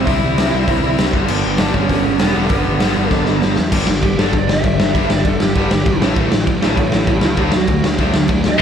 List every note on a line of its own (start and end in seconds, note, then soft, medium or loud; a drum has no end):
0.06 0.20 C2 loud
0.06 0.51 C3 medium
0.06 0.54 G3 medium
0.06 0.52 C4 loud
0.06 0.94 E4 medium
0.06 1.14 E4 medium
0.06 0.94 E5 loud
0.06 kick loud
0.06 open hi-hat medium
0.23 0.36 C2 medium
0.38 0.51 C2 medium
0.38 snare loud
0.38 open hi-hat medium
0.53 0.66 C2 medium
0.53 1.14 C3 medium
0.53 1.15 G3 medium
0.53 1.13 C4 medium
0.68 0.81 C2 loud
0.68 kick loud
0.68 open hi-hat medium
0.83 0.96 C2 medium
0.98 1.15 C2 medium
0.98 snare loud
0.98 open hi-hat medium
1.13 1.27 G1 medium
1.13 1.59 G2 medium
1.13 1.59 D3 loud
1.13 1.62 G3 loud
1.13 2.36 B3 medium
1.13 2.36 D4 medium
1.13 kick loud
1.28 1.42 G1 loud
1.28 crash medium
1.46 1.58 G1 medium
1.58 1.73 G1 loud
1.58 2.34 G2 medium
1.58 2.34 D3 medium
1.58 1.73 D4 medium
1.58 1.73 D5 medium
1.58 snare loud
1.58 open hi-hat medium
1.62 2.37 G3 medium
1.74 1.88 G1 medium
1.74 2.18 C#4 medium
1.74 2.16 C#5 loud
1.74 kick medium
1.89 2.03 G1 medium
1.89 kick medium
1.89 open hi-hat medium
2.07 2.19 G1 medium
2.17 2.48 B3 medium
2.17 2.45 B4 loud
2.17 snare loud
2.17 open hi-hat medium
2.21 2.34 E1 loud
2.34 2.49 E1 medium
2.34 2.78 G2 medium
2.34 2.80 D3 loud
2.34 2.81 G3 loud
2.34 3.57 B3 loud
2.34 3.57 D4 medium
2.46 3.10 B4 medium
2.46 kick loud
2.46 open hi-hat medium
2.51 2.64 G1 medium
2.51 3.38 B3 medium
2.67 2.80 G1 medium
2.79 2.95 G1 medium
2.79 3.55 G2 medium
2.79 3.56 D3 medium
2.79 3.57 G3 medium
2.79 snare loud
2.79 open hi-hat medium
2.97 3.10 G1 medium
3.10 3.25 G1 medium
3.10 3.36 A4 medium
3.10 kick loud
3.10 snare medium
3.26 3.41 G1 medium
3.26 snare medium
3.42 3.56 G1 loud
3.42 snare medium
3.56 3.71 E2 medium
3.56 snare loud
3.72 3.85 G1 medium
3.72 3.86 G2 medium
3.72 3.87 D3 medium
3.72 3.87 G3 medium
3.72 kick loud
3.72 crash loud
3.72 crash medium
3.87 4.01 G1 medium
3.87 4.01 G2 medium
3.87 4.01 D3 medium
3.87 snare loud
4.03 4.16 G1 medium
4.03 4.17 G2 medium
4.03 4.17 D3 medium
4.03 4.19 G4 medium
4.03 kick loud
4.03 crash medium
4.18 4.31 G1 medium
4.18 4.33 G2 medium
4.18 4.33 D3 loud
4.18 4.33 G3 loud
4.18 4.33 A4 medium
4.18 snare loud
4.33 4.46 G1 medium
4.33 4.48 G2 medium
4.33 4.47 D3 medium
4.33 kick loud
4.33 crash medium
4.38 4.51 D5 medium
4.48 4.62 G1 medium
4.48 4.62 G2 medium
4.48 4.62 D3 medium
4.48 5.08 E5 medium
4.48 snare loud
4.64 4.77 G1 medium
4.64 4.78 G2 medium
4.64 4.78 D3 loud
4.64 kick loud
4.64 crash medium
4.79 4.92 G1 medium
4.79 4.93 G2 medium
4.79 4.93 D3 medium
4.79 snare loud
4.95 5.08 G1 loud
4.95 5.09 G2 medium
4.95 5.09 D3 medium
4.95 5.09 G3 loud
4.95 kick loud
4.95 crash medium
5.10 5.23 G1 medium
5.10 5.23 G2 medium
5.10 5.24 D3 medium
5.10 5.25 D5 medium
5.10 snare loud
5.25 5.38 G1 medium
5.25 5.39 G2 medium
5.25 5.39 D3 medium
5.25 5.41 A4 medium
5.25 kick loud
5.25 crash medium
5.40 5.54 G1 medium
5.40 5.54 G2 medium
5.40 5.54 D3 medium
5.40 6.00 G4 medium
5.40 snare loud
5.55 5.69 G1 medium
5.55 5.70 G2 medium
5.55 5.70 D3 loud
5.55 5.71 G3 loud
5.55 kick loud
5.55 crash medium
5.71 5.84 G1 medium
5.71 5.85 G2 medium
5.71 5.85 D3 medium
5.71 snare loud
5.86 5.99 G#1 medium
5.86 6.00 G2 medium
5.86 6.00 D3 loud
5.86 kick loud
5.86 crash medium
6.01 6.14 A1 medium
6.01 6.16 A2 medium
6.01 6.16 E3 loud
6.01 6.16 A3 loud
6.01 snare loud
6.16 6.30 A1 loud
6.16 6.31 A2 medium
6.16 6.31 E3 loud
6.16 6.32 A3 medium
6.16 kick loud
6.16 crash medium
6.32 6.45 A1 medium
6.32 6.46 A2 medium
6.32 6.46 E3 medium
6.32 snare loud
6.47 6.60 A1 loud
6.47 6.60 A2 medium
6.47 6.61 E3 medium
6.47 kick loud
6.47 crash medium
6.62 6.76 A1 medium
6.62 6.76 A2 medium
6.62 6.77 E3 loud
6.62 6.77 A3 loud
6.62 6.78 A4 medium
6.62 6.78 C#5 medium
6.62 snare loud
6.77 6.91 A1 medium
6.77 6.91 A2 medium
6.77 6.91 E3 medium
6.77 6.93 A4 medium
6.77 6.94 C#5 loud
6.77 kick loud
6.77 crash medium
6.92 7.06 A1 medium
6.92 7.06 A2 medium
6.92 7.07 E3 medium
6.92 7.08 A4 medium
6.92 7.09 C#5 medium
6.92 snare loud
7.07 7.20 A1 medium
7.07 7.20 A2 medium
7.07 7.20 E3 medium
7.07 kick loud
7.07 crash medium
7.13 7.25 G4 medium
7.13 7.25 B4 medium
7.21 7.36 C#2 medium
7.21 7.36 A2 medium
7.21 7.36 E3 medium
7.21 snare loud
7.27 7.39 G4 medium
7.27 7.40 B4 medium
7.37 7.51 D2 loud
7.37 7.51 D3 medium
7.37 7.52 F#3 medium
7.37 7.51 A3 loud
7.37 7.52 D4 loud
7.37 7.54 D4 medium
7.37 kick loud
7.37 crash medium
7.41 7.55 B4 medium
7.52 7.67 D2 medium
7.52 7.66 D3 medium
7.52 7.67 F#3 medium
7.52 7.67 A3 medium
7.52 7.84 F#4 medium
7.52 snare loud
7.67 7.82 D2 medium
7.67 7.82 D3 medium
7.67 7.82 F#3 medium
7.67 7.82 A3 medium
7.67 kick loud
7.67 crash medium
7.84 7.98 D2 medium
7.84 7.97 D3 medium
7.84 7.98 F#3 medium
7.84 7.98 A3 medium
7.84 snare loud
7.98 8.12 D2 loud
7.98 8.12 D3 medium
7.98 8.13 F#3 loud
7.98 8.13 A3 medium
7.98 8.13 D4 loud
7.98 kick loud
7.98 crash medium
8.14 8.28 D2 medium
8.14 8.27 D3 medium
8.14 8.28 F#3 medium
8.14 8.28 A3 medium
8.14 snare loud
8.28 8.43 D2 medium
8.28 8.43 D3 medium
8.28 8.44 F#3 medium
8.28 8.43 A3 medium
8.28 kick loud
8.28 crash medium
8.44 8.58 D2 medium
8.44 8.59 D3 medium
8.44 8.59 F#3 medium
8.44 8.59 A3 medium
8.44 snare loud
8.49 8.62 E5 loud
8.58 8.62 G2 medium